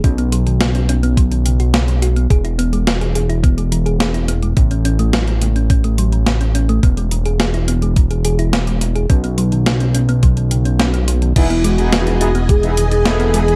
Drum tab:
CC |----------------|----------------|----------------|----------------|
HH |xxxxxxxxxxxxxxxx|xxxxxxxxxxxxxxxx|xxxxxxxxxxxxxxxx|xxxxxxxxxxxxxxxx|
SD |----o-------o---|----o-------o---|----o-------o---|----o-------o---|
BD |o-------o-------|o-------o-------|o-------o-------|o-------o-------|

CC |----------------|x---------------|
HH |xxxxxxxxxxxxxxxx|xxxxxxxxxxxxxxxx|
SD |----o-------o---|----o-------o---|
BD |o-------o-------|o-------o-------|